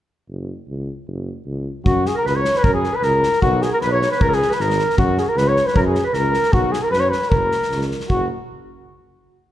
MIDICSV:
0, 0, Header, 1, 5, 480
1, 0, Start_track
1, 0, Key_signature, 6, "major"
1, 0, Tempo, 391134
1, 351, Time_signature, 2, 2, 24, 8
1, 11680, End_track
2, 0, Start_track
2, 0, Title_t, "Clarinet"
2, 0, Program_c, 0, 71
2, 2261, Note_on_c, 0, 66, 73
2, 2527, Note_on_c, 0, 68, 62
2, 2546, Note_off_c, 0, 66, 0
2, 2623, Note_off_c, 0, 68, 0
2, 2630, Note_on_c, 0, 70, 62
2, 2743, Note_off_c, 0, 70, 0
2, 2764, Note_on_c, 0, 71, 78
2, 2892, Note_on_c, 0, 73, 84
2, 2910, Note_off_c, 0, 71, 0
2, 3174, Note_on_c, 0, 71, 67
2, 3193, Note_off_c, 0, 73, 0
2, 3236, Note_on_c, 0, 70, 74
2, 3255, Note_off_c, 0, 71, 0
2, 3362, Note_off_c, 0, 70, 0
2, 3388, Note_on_c, 0, 68, 67
2, 3595, Note_on_c, 0, 71, 69
2, 3613, Note_off_c, 0, 68, 0
2, 3730, Note_on_c, 0, 70, 77
2, 3748, Note_off_c, 0, 71, 0
2, 4200, Note_off_c, 0, 70, 0
2, 4222, Note_on_c, 0, 66, 71
2, 4469, Note_on_c, 0, 68, 79
2, 4487, Note_off_c, 0, 66, 0
2, 4575, Note_off_c, 0, 68, 0
2, 4595, Note_on_c, 0, 70, 61
2, 4637, Note_off_c, 0, 70, 0
2, 4702, Note_on_c, 0, 71, 81
2, 4804, Note_off_c, 0, 71, 0
2, 4838, Note_on_c, 0, 73, 78
2, 5040, Note_off_c, 0, 73, 0
2, 5055, Note_on_c, 0, 71, 76
2, 5193, Note_on_c, 0, 70, 80
2, 5211, Note_off_c, 0, 71, 0
2, 5273, Note_on_c, 0, 68, 68
2, 5291, Note_off_c, 0, 70, 0
2, 5517, Note_on_c, 0, 71, 65
2, 5535, Note_off_c, 0, 68, 0
2, 5661, Note_on_c, 0, 70, 77
2, 5679, Note_off_c, 0, 71, 0
2, 6120, Note_off_c, 0, 70, 0
2, 6134, Note_on_c, 0, 66, 65
2, 6373, Note_on_c, 0, 68, 68
2, 6391, Note_off_c, 0, 66, 0
2, 6391, Note_on_c, 0, 66, 60
2, 6410, Note_off_c, 0, 68, 0
2, 6430, Note_on_c, 0, 68, 59
2, 6448, Note_off_c, 0, 66, 0
2, 6489, Note_on_c, 0, 70, 65
2, 6507, Note_off_c, 0, 68, 0
2, 6596, Note_on_c, 0, 71, 81
2, 6615, Note_off_c, 0, 70, 0
2, 6734, Note_on_c, 0, 73, 76
2, 6752, Note_off_c, 0, 71, 0
2, 6965, Note_on_c, 0, 71, 69
2, 6983, Note_off_c, 0, 73, 0
2, 7068, Note_off_c, 0, 71, 0
2, 7097, Note_on_c, 0, 70, 71
2, 7145, Note_off_c, 0, 70, 0
2, 7196, Note_on_c, 0, 68, 66
2, 7403, Note_off_c, 0, 68, 0
2, 7410, Note_on_c, 0, 71, 69
2, 7535, Note_on_c, 0, 70, 79
2, 7553, Note_off_c, 0, 71, 0
2, 8009, Note_on_c, 0, 66, 67
2, 8027, Note_off_c, 0, 70, 0
2, 8278, Note_on_c, 0, 68, 60
2, 8297, Note_off_c, 0, 66, 0
2, 8391, Note_on_c, 0, 70, 65
2, 8410, Note_off_c, 0, 68, 0
2, 8495, Note_off_c, 0, 70, 0
2, 8502, Note_on_c, 0, 71, 69
2, 8622, Note_on_c, 0, 73, 64
2, 8640, Note_off_c, 0, 71, 0
2, 8732, Note_on_c, 0, 71, 62
2, 8751, Note_off_c, 0, 73, 0
2, 8982, Note_on_c, 0, 70, 63
2, 9000, Note_off_c, 0, 71, 0
2, 9702, Note_off_c, 0, 70, 0
2, 9926, Note_on_c, 0, 66, 65
2, 10157, Note_off_c, 0, 66, 0
2, 11680, End_track
3, 0, Start_track
3, 0, Title_t, "Flugelhorn"
3, 0, Program_c, 1, 56
3, 2280, Note_on_c, 1, 66, 81
3, 2546, Note_on_c, 1, 68, 72
3, 2564, Note_off_c, 1, 66, 0
3, 2658, Note_off_c, 1, 68, 0
3, 2673, Note_on_c, 1, 70, 82
3, 2766, Note_off_c, 1, 70, 0
3, 2788, Note_on_c, 1, 71, 78
3, 2899, Note_on_c, 1, 73, 78
3, 2917, Note_off_c, 1, 71, 0
3, 3153, Note_on_c, 1, 71, 89
3, 3171, Note_off_c, 1, 73, 0
3, 3235, Note_on_c, 1, 70, 94
3, 3253, Note_off_c, 1, 71, 0
3, 3348, Note_off_c, 1, 70, 0
3, 3355, Note_on_c, 1, 68, 86
3, 3628, Note_on_c, 1, 71, 79
3, 3647, Note_off_c, 1, 68, 0
3, 3734, Note_on_c, 1, 70, 107
3, 3753, Note_off_c, 1, 71, 0
3, 4188, Note_off_c, 1, 70, 0
3, 4196, Note_on_c, 1, 66, 93
3, 4444, Note_on_c, 1, 68, 66
3, 4462, Note_off_c, 1, 66, 0
3, 4563, Note_off_c, 1, 68, 0
3, 4572, Note_on_c, 1, 70, 79
3, 4619, Note_off_c, 1, 70, 0
3, 4677, Note_on_c, 1, 71, 86
3, 4790, Note_off_c, 1, 71, 0
3, 4802, Note_on_c, 1, 73, 76
3, 5020, Note_off_c, 1, 73, 0
3, 5048, Note_on_c, 1, 71, 73
3, 5173, Note_on_c, 1, 70, 90
3, 5191, Note_off_c, 1, 71, 0
3, 5325, Note_on_c, 1, 68, 80
3, 5344, Note_off_c, 1, 70, 0
3, 5563, Note_on_c, 1, 71, 81
3, 5581, Note_off_c, 1, 68, 0
3, 5657, Note_on_c, 1, 70, 77
3, 5675, Note_off_c, 1, 71, 0
3, 6106, Note_off_c, 1, 70, 0
3, 6113, Note_on_c, 1, 66, 84
3, 6358, Note_on_c, 1, 68, 66
3, 6376, Note_off_c, 1, 66, 0
3, 6381, Note_on_c, 1, 66, 65
3, 6399, Note_off_c, 1, 68, 0
3, 6427, Note_on_c, 1, 68, 57
3, 6446, Note_off_c, 1, 66, 0
3, 6489, Note_on_c, 1, 70, 69
3, 6507, Note_off_c, 1, 68, 0
3, 6601, Note_on_c, 1, 71, 87
3, 6620, Note_off_c, 1, 70, 0
3, 6724, Note_on_c, 1, 73, 77
3, 6742, Note_off_c, 1, 71, 0
3, 6949, Note_on_c, 1, 71, 75
3, 6967, Note_off_c, 1, 73, 0
3, 7060, Note_off_c, 1, 71, 0
3, 7070, Note_on_c, 1, 70, 99
3, 7124, Note_off_c, 1, 70, 0
3, 7206, Note_on_c, 1, 68, 72
3, 7419, Note_off_c, 1, 68, 0
3, 7443, Note_on_c, 1, 71, 63
3, 7546, Note_on_c, 1, 70, 89
3, 7565, Note_off_c, 1, 71, 0
3, 8021, Note_on_c, 1, 66, 84
3, 8040, Note_off_c, 1, 70, 0
3, 8247, Note_on_c, 1, 68, 71
3, 8265, Note_off_c, 1, 66, 0
3, 8379, Note_on_c, 1, 70, 72
3, 8398, Note_off_c, 1, 68, 0
3, 8465, Note_off_c, 1, 70, 0
3, 8473, Note_on_c, 1, 71, 91
3, 8594, Note_on_c, 1, 73, 69
3, 8612, Note_off_c, 1, 71, 0
3, 8708, Note_on_c, 1, 71, 78
3, 8726, Note_off_c, 1, 73, 0
3, 8953, Note_on_c, 1, 70, 82
3, 8972, Note_off_c, 1, 71, 0
3, 9688, Note_off_c, 1, 70, 0
3, 9926, Note_on_c, 1, 66, 76
3, 10157, Note_off_c, 1, 66, 0
3, 11680, End_track
4, 0, Start_track
4, 0, Title_t, "Tuba"
4, 0, Program_c, 2, 58
4, 354, Note_on_c, 2, 30, 64
4, 619, Note_off_c, 2, 30, 0
4, 830, Note_on_c, 2, 37, 65
4, 1097, Note_off_c, 2, 37, 0
4, 1315, Note_on_c, 2, 30, 70
4, 1580, Note_off_c, 2, 30, 0
4, 1791, Note_on_c, 2, 37, 66
4, 2057, Note_off_c, 2, 37, 0
4, 2268, Note_on_c, 2, 42, 79
4, 2535, Note_off_c, 2, 42, 0
4, 2756, Note_on_c, 2, 37, 80
4, 3020, Note_off_c, 2, 37, 0
4, 3239, Note_on_c, 2, 42, 79
4, 3501, Note_off_c, 2, 42, 0
4, 3714, Note_on_c, 2, 37, 87
4, 3977, Note_off_c, 2, 37, 0
4, 4205, Note_on_c, 2, 35, 95
4, 4464, Note_off_c, 2, 35, 0
4, 4692, Note_on_c, 2, 35, 90
4, 4948, Note_off_c, 2, 35, 0
4, 5160, Note_on_c, 2, 37, 77
4, 5419, Note_off_c, 2, 37, 0
4, 5638, Note_on_c, 2, 32, 81
4, 5897, Note_off_c, 2, 32, 0
4, 6106, Note_on_c, 2, 42, 91
4, 6368, Note_off_c, 2, 42, 0
4, 6583, Note_on_c, 2, 37, 92
4, 6845, Note_off_c, 2, 37, 0
4, 7062, Note_on_c, 2, 42, 96
4, 7324, Note_off_c, 2, 42, 0
4, 7531, Note_on_c, 2, 37, 82
4, 7797, Note_off_c, 2, 37, 0
4, 8002, Note_on_c, 2, 35, 78
4, 8270, Note_off_c, 2, 35, 0
4, 8475, Note_on_c, 2, 42, 79
4, 8746, Note_off_c, 2, 42, 0
4, 8960, Note_on_c, 2, 30, 78
4, 9230, Note_off_c, 2, 30, 0
4, 9446, Note_on_c, 2, 37, 85
4, 9714, Note_off_c, 2, 37, 0
4, 9927, Note_on_c, 2, 30, 82
4, 10158, Note_off_c, 2, 30, 0
4, 11680, End_track
5, 0, Start_track
5, 0, Title_t, "Drums"
5, 2282, Note_on_c, 9, 36, 90
5, 2404, Note_off_c, 9, 36, 0
5, 2524, Note_on_c, 9, 38, 27
5, 2647, Note_off_c, 9, 38, 0
5, 2777, Note_on_c, 9, 38, 29
5, 2900, Note_off_c, 9, 38, 0
5, 3000, Note_on_c, 9, 38, 28
5, 3119, Note_off_c, 9, 38, 0
5, 3119, Note_on_c, 9, 38, 22
5, 3240, Note_on_c, 9, 36, 98
5, 3242, Note_off_c, 9, 38, 0
5, 3363, Note_off_c, 9, 36, 0
5, 3482, Note_on_c, 9, 38, 27
5, 3605, Note_off_c, 9, 38, 0
5, 3710, Note_on_c, 9, 38, 25
5, 3833, Note_off_c, 9, 38, 0
5, 3963, Note_on_c, 9, 38, 26
5, 4083, Note_off_c, 9, 38, 0
5, 4083, Note_on_c, 9, 38, 20
5, 4201, Note_on_c, 9, 36, 81
5, 4205, Note_off_c, 9, 38, 0
5, 4324, Note_off_c, 9, 36, 0
5, 4440, Note_on_c, 9, 38, 28
5, 4563, Note_off_c, 9, 38, 0
5, 4677, Note_on_c, 9, 38, 28
5, 4800, Note_off_c, 9, 38, 0
5, 4931, Note_on_c, 9, 38, 29
5, 5054, Note_off_c, 9, 38, 0
5, 5058, Note_on_c, 9, 38, 22
5, 5166, Note_on_c, 9, 36, 97
5, 5181, Note_off_c, 9, 38, 0
5, 5289, Note_off_c, 9, 36, 0
5, 5306, Note_on_c, 9, 38, 24
5, 5422, Note_off_c, 9, 38, 0
5, 5422, Note_on_c, 9, 38, 30
5, 5538, Note_off_c, 9, 38, 0
5, 5538, Note_on_c, 9, 38, 26
5, 5646, Note_off_c, 9, 38, 0
5, 5646, Note_on_c, 9, 38, 28
5, 5769, Note_off_c, 9, 38, 0
5, 5772, Note_on_c, 9, 38, 30
5, 5876, Note_off_c, 9, 38, 0
5, 5876, Note_on_c, 9, 38, 28
5, 5999, Note_off_c, 9, 38, 0
5, 6014, Note_on_c, 9, 38, 25
5, 6115, Note_on_c, 9, 36, 96
5, 6136, Note_off_c, 9, 38, 0
5, 6237, Note_off_c, 9, 36, 0
5, 6351, Note_on_c, 9, 38, 26
5, 6473, Note_off_c, 9, 38, 0
5, 6595, Note_on_c, 9, 38, 30
5, 6717, Note_off_c, 9, 38, 0
5, 6826, Note_on_c, 9, 38, 28
5, 6949, Note_off_c, 9, 38, 0
5, 6965, Note_on_c, 9, 38, 22
5, 7065, Note_on_c, 9, 36, 94
5, 7088, Note_off_c, 9, 38, 0
5, 7187, Note_off_c, 9, 36, 0
5, 7300, Note_on_c, 9, 38, 25
5, 7422, Note_off_c, 9, 38, 0
5, 7529, Note_on_c, 9, 38, 28
5, 7651, Note_off_c, 9, 38, 0
5, 7775, Note_on_c, 9, 38, 24
5, 7887, Note_off_c, 9, 38, 0
5, 7887, Note_on_c, 9, 38, 23
5, 8009, Note_off_c, 9, 38, 0
5, 8016, Note_on_c, 9, 36, 92
5, 8139, Note_off_c, 9, 36, 0
5, 8260, Note_on_c, 9, 38, 29
5, 8383, Note_off_c, 9, 38, 0
5, 8505, Note_on_c, 9, 38, 29
5, 8628, Note_off_c, 9, 38, 0
5, 8741, Note_on_c, 9, 38, 29
5, 8863, Note_off_c, 9, 38, 0
5, 8863, Note_on_c, 9, 38, 22
5, 8978, Note_on_c, 9, 36, 90
5, 8985, Note_off_c, 9, 38, 0
5, 9101, Note_off_c, 9, 36, 0
5, 9221, Note_on_c, 9, 38, 28
5, 9344, Note_off_c, 9, 38, 0
5, 9357, Note_on_c, 9, 38, 22
5, 9466, Note_off_c, 9, 38, 0
5, 9466, Note_on_c, 9, 38, 23
5, 9589, Note_off_c, 9, 38, 0
5, 9589, Note_on_c, 9, 38, 23
5, 9711, Note_off_c, 9, 38, 0
5, 9712, Note_on_c, 9, 38, 24
5, 9820, Note_off_c, 9, 38, 0
5, 9820, Note_on_c, 9, 38, 21
5, 9939, Note_on_c, 9, 36, 87
5, 9943, Note_off_c, 9, 38, 0
5, 10062, Note_off_c, 9, 36, 0
5, 11680, End_track
0, 0, End_of_file